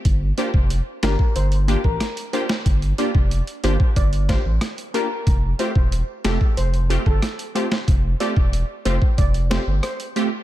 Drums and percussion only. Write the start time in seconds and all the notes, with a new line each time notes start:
0.05 kick, closed hi-hat
0.38 closed hi-hat
0.54 kick
0.70 closed hi-hat
1.03 snare, closed hi-hat
1.19 kick
1.36 closed hi-hat
1.52 closed hi-hat
1.68 closed hi-hat
1.84 kick
2.00 cross-stick, snare, closed hi-hat
2.17 closed hi-hat
2.33 closed hi-hat
2.49 snare
2.66 kick, closed hi-hat
2.82 closed hi-hat
2.98 closed hi-hat
3.15 kick
3.31 closed hi-hat
3.47 closed hi-hat
3.64 closed hi-hat
3.80 kick
3.96 kick, closed hi-hat
4.13 closed hi-hat
4.29 kick, snare, closed hi-hat
4.61 cross-stick, snare, closed hi-hat
4.78 closed hi-hat
4.94 closed hi-hat
5.27 kick, closed hi-hat
5.59 closed hi-hat
5.75 kick
5.92 closed hi-hat
6.25 snare, closed hi-hat
6.41 kick
6.57 closed hi-hat
6.74 closed hi-hat
6.90 closed hi-hat
7.06 kick
7.22 cross-stick, snare, closed hi-hat
7.39 closed hi-hat
7.56 closed hi-hat
7.72 snare
7.88 kick, closed hi-hat
8.20 closed hi-hat
8.37 kick
8.53 closed hi-hat
8.85 closed hi-hat
9.02 kick
9.18 kick, closed hi-hat
9.34 closed hi-hat
9.51 snare, closed hi-hat
9.83 cross-stick, closed hi-hat
10.00 closed hi-hat
10.16 closed hi-hat